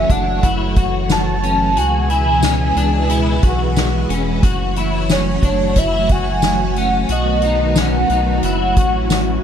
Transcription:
0.00 7.06 E3 medium
0.00 1.72 F#3 medium
0.00 1.72 A3 medium
0.00 1.72 F#4 medium
0.00 1.74 C#5 medium
0.00 0.13 E5 loud
0.10 0.41 F#1 loud
0.10 0.43 D4 medium
0.10 0.77 F#5 loud
0.10 kick loud
0.10 closed hi-hat medium
0.43 1.78 F#1 loud
0.43 0.76 E4 loud
0.43 kick medium
0.43 closed hi-hat medium
0.76 1.43 F#4 medium
0.76 kick loud
0.76 closed hi-hat medium
1.09 1.79 A5 loud
1.09 snare loud
1.09 closed hi-hat medium
1.09 tambourine medium
1.44 1.77 C#4 medium
1.44 closed hi-hat medium
1.77 2.72 C#2 loud
1.77 4.41 B2 medium
1.77 4.41 G#3 medium
1.77 4.41 B3 medium
1.77 4.41 E4 medium
1.77 2.10 F#4 medium
1.77 3.77 G#5 loud
1.77 closed hi-hat medium
2.10 2.43 E4 medium
2.10 closed hi-hat soft
2.43 2.76 C#4 medium
2.43 snare loud
2.43 closed hi-hat medium
2.43 tambourine medium
2.76 3.40 C#2 loud
2.76 3.10 D4 medium
2.76 closed hi-hat medium
3.10 3.43 E4 medium
3.10 closed hi-hat medium
3.43 4.06 B1 loud
3.43 4.10 F#4 medium
3.43 kick loud
3.43 closed hi-hat medium
3.76 snare loud
3.76 closed hi-hat medium
3.76 tambourine medium
4.09 4.44 E1 loud
4.09 4.43 C#4 medium
4.09 closed hi-hat medium
4.43 5.39 F#1 loud
4.43 7.07 F#3 medium
4.43 9.44 A3 medium
4.43 7.07 F#4 medium
4.43 4.76 F#4 medium
4.43 7.07 C#5 medium
4.43 kick loud
4.43 closed hi-hat medium
4.76 5.10 E4 medium
4.76 closed hi-hat medium
5.10 5.43 C#4 medium
5.10 5.42 C#5 loud
5.10 snare loud
5.10 closed hi-hat medium
5.10 tambourine medium
5.43 5.74 F#1 loud
5.43 5.77 D4 medium
5.43 5.80 C#5 medium
5.43 kick loud
5.43 closed hi-hat medium
5.76 7.05 F#1 loud
5.76 6.10 E4 medium
5.76 6.13 E5 loud
5.76 kick medium
5.76 closed hi-hat medium
6.09 6.77 F#4 medium
6.09 6.80 G#5 loud
6.09 kick loud
6.09 closed hi-hat medium
6.42 snare loud
6.42 closed hi-hat medium
6.42 tambourine medium
6.76 7.10 C#4 medium
6.76 7.11 F#5 loud
6.76 closed hi-hat medium
7.09 8.05 B1 loud
7.09 8.41 D#3 medium
7.09 9.44 F#3 medium
7.09 8.41 B3 medium
7.09 9.44 F#4 medium
7.09 7.43 F#4 loud
7.09 7.80 D#5 loud
7.09 closed hi-hat medium
7.42 7.77 D#4 medium
7.42 closed hi-hat medium
7.76 8.10 C#4 medium
7.76 8.44 F#5 loud
7.76 snare loud
7.76 closed hi-hat medium
7.76 tambourine medium
8.10 8.41 B1 loud
8.10 8.44 D#4 medium
8.10 closed hi-hat medium
8.43 8.75 F#1 loud
8.43 9.44 E3 medium
8.43 9.44 C#4 medium
8.43 8.77 E4 medium
8.43 9.40 F#5 loud
8.43 closed hi-hat medium
8.76 9.40 A1 medium
8.76 9.43 F#4 medium
8.76 kick loud
8.76 closed hi-hat medium
9.10 snare loud
9.10 closed hi-hat medium
9.10 tambourine medium

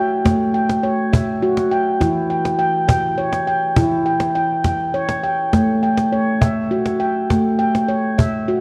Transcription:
0.00 0.25 F#4 medium
0.00 0.25 E5 medium
0.00 0.53 G5 medium
0.25 0.83 A3 medium
0.25 cajon bass medium
0.25 cajon slap soft
0.54 1.42 G5 medium
0.69 cajon slap soft
0.83 1.42 C#5 medium
1.13 2.00 E5 medium
1.13 cajon bass medium
1.42 2.01 F#4 medium
1.57 cajon slap soft
1.71 2.29 G5 medium
2.00 3.73 E3 medium
2.00 2.59 E4 medium
2.00 cajon bass soft
2.00 cajon slap soft
2.30 2.57 G5 medium
2.45 cajon slap soft
2.59 2.87 G5 medium
2.88 3.46 G5 medium
2.88 cajon bass medium
3.17 3.76 C#5 medium
3.32 cajon slap soft
3.47 4.05 G5 medium
3.76 5.49 E3 medium
3.76 4.36 E4 medium
3.76 cajon bass medium
3.92 cajon slap soft
4.06 4.34 G5 medium
4.20 cajon slap soft
4.35 4.63 G5 medium
4.64 5.22 G5 medium
4.64 cajon bass medium
4.64 cajon slap soft
4.80 cajon slap soft
4.94 5.53 C#5 medium
4.94 cajon slap soft
5.09 cajon slap soft
5.23 5.82 G5 medium
5.53 6.12 A3 medium
5.53 cajon bass medium
5.53 cajon slap soft
5.83 6.71 G5 medium
5.97 cajon slap soft
6.12 6.71 C#5 medium
6.41 7.30 E5 medium
6.41 cajon bass medium
6.71 7.30 F#4 medium
6.86 cajon slap soft
7.00 7.58 G5 medium
7.30 7.89 A3 medium
7.30 cajon bass medium
7.30 cajon slap soft
7.59 8.48 G5 medium
7.75 cajon slap soft
7.89 8.48 C#5 medium
8.18 8.61 E5 medium
8.18 cajon bass medium
8.48 8.61 F#4 medium

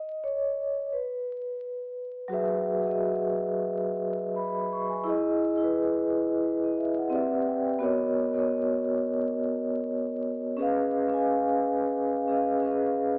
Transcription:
0.00 0.19 D#5 loud
0.24 0.94 C#5 medium
0.93 1.91 B4 medium
2.28 2.62 F#3 loud
2.28 2.63 F#4 loud
2.28 2.64 G#4 loud
2.32 2.65 B4 loud
2.32 2.65 E5 loud
2.81 3.71 F#3 medium
2.81 3.72 F#4 medium
2.81 3.72 G#4 medium
2.85 3.73 B4 medium
2.85 3.74 D#5 medium
4.36 4.69 B5 medium
4.72 4.90 C#6 medium
4.89 5.22 G#5 medium
5.04 5.38 E4 loud
5.04 5.40 G#4 loud
5.09 5.41 D#5 loud
5.57 6.36 E4 medium
5.57 6.37 G#4 medium
5.63 6.39 B4 medium
6.44 6.62 B4 medium
6.64 6.77 D#5 medium
6.78 6.96 E5 medium
6.98 7.30 F#5 medium
7.10 7.67 C4 loud
7.10 7.68 G4 medium
7.10 7.69 B4 medium
7.10 7.69 D5 medium
7.15 7.70 E5 loud
7.47 7.78 G5 medium
7.79 8.14 B3 loud
7.79 8.14 F#4 loud
7.79 8.15 A#4 loud
7.83 8.16 C#5 loud
7.83 8.16 D#5 loud
8.34 9.23 B3 medium
8.34 9.24 F#4 medium
8.34 9.24 A#4 medium
8.38 9.25 C#5 medium
8.38 9.26 D#5 loud
10.57 10.91 C#4 loud
10.57 10.91 G#4 medium
10.57 10.92 B4 loud
10.61 10.93 D#5 loud
10.61 10.93 F5 loud
11.08 11.87 C#4 medium
11.08 11.88 G#4 medium
11.08 11.89 B4 medium
11.12 11.89 D#5 medium
11.12 11.90 G#5 medium
12.28 12.61 C#4 medium
12.28 12.62 G#4 medium
12.28 12.64 B4 medium
12.32 12.65 D#5 medium
12.32 12.66 F5 medium
12.62 13.19 C#4 medium
12.62 13.19 G#4 medium
12.62 13.19 B4 medium
12.66 13.19 D#5 medium
12.66 13.19 F5 loud

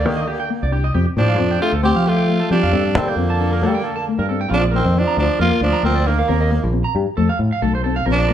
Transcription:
0.00 0.70 D3 medium
0.00 0.71 A#3 medium
0.05 0.24 D#3 medium
0.05 0.17 A#3 medium
0.05 0.15 G4 medium
0.17 0.26 D#5 medium
0.27 0.38 G4 medium
0.40 0.48 G5 medium
0.50 0.62 A#3 medium
0.63 0.90 C2 medium
0.63 0.71 D5 medium
0.72 0.84 D4 medium
0.72 0.82 G4 medium
0.84 0.92 D#5 medium
0.94 1.05 F2 medium
0.94 1.07 C4 medium
0.94 1.05 G4 medium
1.17 1.38 A2 medium
1.17 1.59 F3 medium
1.17 1.29 A#3 medium
1.17 1.59 D4 medium
1.17 1.28 G4 medium
1.28 1.37 F5 medium
1.38 1.57 F2 medium
1.38 1.51 C4 medium
1.51 1.59 G5 medium
1.60 1.72 A3 medium
1.60 1.73 D4 medium
1.60 1.72 F4 medium
1.60 1.71 G4 medium
1.72 1.92 D2 medium
1.72 1.81 A4 medium
1.83 1.95 A3 medium
1.83 2.09 C4 medium
1.83 1.94 G4 medium
1.83 2.10 G4 loud
1.95 2.41 F3 medium
1.95 2.04 F5 medium
2.06 2.51 A3 medium
2.06 2.51 F4 medium
2.06 2.16 G4 medium
2.17 2.25 G5 medium
2.29 2.40 A3 medium
2.40 2.48 A4 medium
2.50 2.61 F3 medium
2.50 2.98 G3 medium
2.50 2.62 C4 medium
2.50 2.98 D4 loud
2.50 2.61 G4 medium
2.63 2.71 F2 medium
2.63 2.71 F5 medium
2.73 2.95 G2 loud
2.73 2.85 C4 medium
2.73 2.83 A4 medium
2.95 3.10 D#3 medium
2.95 3.14 G3 medium
2.95 3.07 A#3 medium
2.95 3.11 C4 medium
2.95 3.05 A4 medium
3.08 4.29 D3 medium
3.08 4.29 A#3 medium
3.08 3.16 G5 medium
3.16 3.63 F2 medium
3.16 3.30 C4 medium
3.30 3.38 A5 medium
3.41 3.53 D4 medium
3.41 3.50 A4 medium
3.53 3.60 A#4 medium
3.62 3.80 G3 medium
3.62 3.75 A3 medium
3.62 3.73 A4 medium
3.74 3.82 G5 medium
3.84 3.94 A4 medium
3.96 4.04 A5 medium
4.08 4.20 A3 medium
4.19 4.45 G2 medium
4.19 4.27 A#4 medium
4.29 4.42 C4 medium
4.29 4.39 A4 medium
4.41 4.49 G5 medium
4.49 4.80 A#1 medium
4.49 4.64 C4 medium
4.49 4.60 F4 medium
4.54 4.66 F3 medium
4.54 4.63 D4 loud
4.62 4.71 D5 medium
4.71 4.85 A#3 medium
4.71 5.00 C4 medium
4.71 4.82 A#4 medium
4.77 5.01 D#3 medium
4.85 5.04 F2 medium
4.95 5.07 C4 medium
4.95 5.18 D4 medium
5.00 5.20 F3 medium
5.07 5.16 A#5 medium
5.17 5.27 D2 medium
5.17 5.30 D4 medium
5.17 5.39 D4 medium
5.21 5.40 F3 medium
5.39 5.50 F2 medium
5.39 5.61 A#3 medium
5.39 5.53 A#3 medium
5.39 5.61 F4 loud
5.39 5.49 A#4 medium
5.51 5.59 F5 medium
5.61 5.72 D2 medium
5.61 5.83 F3 medium
5.61 5.83 D4 medium
5.73 5.82 A#5 medium
5.83 6.21 D2 medium
5.83 6.09 F3 medium
5.83 5.96 A#3 medium
5.83 6.08 C4 medium
5.83 5.94 A#4 medium
5.95 6.04 D5 medium
6.07 6.74 D#3 medium
6.07 6.73 A#3 medium
6.07 6.19 D4 medium
6.07 6.17 A#4 medium
6.19 6.27 F5 medium
6.28 6.58 D#2 medium
6.28 6.41 C4 medium
6.28 6.38 A#4 medium
6.41 6.49 D#5 medium
6.51 6.63 A#3 medium
6.51 muted clean electric guitar stroke medium
6.63 6.82 A#1 loud
6.73 6.85 C4 medium
6.84 6.93 A#5 medium
6.95 7.05 G2 medium
6.95 7.08 G4 medium
7.17 7.28 F2 medium
7.17 7.29 A3 medium
7.17 7.27 A4 medium
7.29 7.38 F5 medium
7.39 7.50 A2 medium
7.52 7.61 F5 medium
7.62 8.00 B1 medium
7.62 7.74 A3 medium
7.62 7.72 A4 medium
7.75 7.83 C5 medium
7.84 7.97 C4 medium
7.84 7.94 A4 medium
7.96 8.05 F5 medium
8.06 8.33 A#1 medium
8.06 8.19 C4 medium
8.06 8.16 A#4 medium
8.12 8.33 F3 medium
8.12 8.33 D4 loud
8.19 8.27 D5 medium
8.28 8.33 A#3 medium
8.28 8.33 A#4 medium

